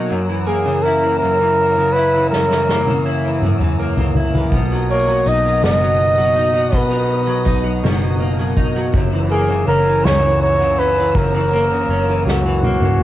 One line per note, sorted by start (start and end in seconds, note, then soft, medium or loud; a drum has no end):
0.00 0.11 B2 medium
0.00 0.29 F#3 medium
0.00 0.32 A#3 medium
0.00 0.18 D#4 medium
0.00 4.48 F#5 medium
0.00 8.90 A#5 medium
0.10 1.21 F#2 medium
0.10 4.48 C#5 medium
0.10 4.48 E6 medium
0.29 1.02 E3 medium
0.47 1.99 A#3 medium
0.47 0.84 G#4 medium
0.65 1.76 C#3 medium
0.83 1.95 E4 medium
0.83 1.18 A#4 medium
1.03 1.40 E3 medium
1.19 2.32 F#2 medium
1.19 1.94 A#4 loud
1.41 2.13 E3 medium
1.78 2.87 C#3 medium
1.93 3.05 E4 medium
1.93 2.29 B4 loud
2.15 2.50 E3 medium
2.30 3.09 A#4 medium
2.30 snare medium
2.34 3.42 F#2 medium
2.51 3.24 E3 medium
2.51 snare medium
2.69 3.79 A#3 medium
2.69 snare medium
2.87 3.96 C#3 medium
2.87 high tom medium
3.06 4.16 E4 medium
3.25 3.60 E3 medium
3.42 4.53 F#2 medium
3.42 mid tom medium
3.60 4.34 E3 soft
3.60 mid tom medium
3.79 4.90 A#3 medium
3.97 4.52 C#3 medium
3.97 floor tom medium
4.15 4.60 E4 medium
4.15 floor tom loud
4.34 4.60 E3 medium
4.34 floor tom loud
4.52 5.22 B1 loud
4.52 5.61 B2 medium
4.52 8.90 D#5 medium
4.52 8.90 F#5 medium
4.52 8.90 D#6 medium
4.52 kick loud
4.52 ride medium
4.72 5.07 F#3 medium
4.89 6.75 A#3 medium
4.89 5.30 C#5 medium
4.89 ride soft
5.08 5.45 F#3 medium
5.26 5.60 B1 medium
5.26 6.35 D#4 medium
5.26 5.64 D#5 loud
5.26 ride soft
5.45 5.81 F#3 medium
5.62 6.73 F#1 medium
5.62 6.71 B2 medium
5.62 6.77 D#5 loud
5.62 snare loud
5.62 ride medium
5.81 6.18 F#3 medium
5.99 ride soft
6.18 6.53 F#3 medium
6.36 7.44 D#4 medium
6.36 ride soft
6.53 6.90 F#3 medium
6.72 7.43 B1 loud
6.72 7.83 B2 medium
6.72 7.85 B4 medium
6.72 kick loud
6.72 ride medium
6.91 7.27 F#3 medium
7.10 ride soft
7.27 7.64 F#3 medium
7.45 7.81 B1 loud
7.45 8.56 D#4 medium
7.45 kick medium
7.45 ride soft
7.64 8.01 F#3 medium
7.83 8.90 F#1 loud
7.83 8.94 B2 medium
7.83 snare loud
7.83 ride medium
8.02 8.39 F#3 medium
8.19 9.16 A#3 medium
8.19 ride soft
8.39 8.76 F#3 medium
8.57 9.01 D#4 medium
8.57 kick medium
8.57 ride soft
8.76 9.13 F#3 medium
8.93 9.64 F#1 loud
8.93 10.04 F#2 medium
8.93 13.03 C#5 medium
8.93 13.03 F#5 medium
8.93 13.03 A#5 medium
8.93 13.03 E6 medium
8.93 kick loud
8.93 ride medium
9.13 9.86 E3 medium
9.31 11.01 A#3 medium
9.31 9.65 G#4 medium
9.31 ride soft
9.50 10.60 C#3 medium
9.68 10.02 F#1 loud
9.68 10.77 C#4 medium
9.68 10.06 A#4 loud
9.68 ride soft
9.87 10.23 E3 medium
10.03 11.11 C#2 loud
10.03 11.14 F#2 medium
10.03 10.41 C#5 loud
10.03 snare loud
10.03 ride medium
10.24 10.97 E3 medium
10.41 10.80 C#5 loud
10.41 ride soft
10.61 11.70 C#3 medium
10.79 11.89 C#4 medium
10.79 11.18 B4 loud
10.79 ride soft
10.98 11.33 E3 medium
11.15 11.85 F#1 loud
11.15 12.26 F#2 medium
11.15 12.26 A#4 medium
11.15 kick loud
11.15 ride medium
11.35 12.08 E3 medium
11.52 12.64 A#3 medium
11.52 ride soft
11.72 12.82 C#3 medium
11.89 12.23 F#1 medium
11.89 13.00 C#4 medium
11.89 ride soft
12.10 12.45 E3 medium
12.25 13.03 C#2 loud
12.25 13.03 F#2 medium
12.25 13.03 F#4 medium
12.25 snare medium
12.46 13.03 E3 medium
12.63 13.03 A#3 medium
12.63 high tom medium
12.82 13.03 C#3 medium
12.82 mid tom medium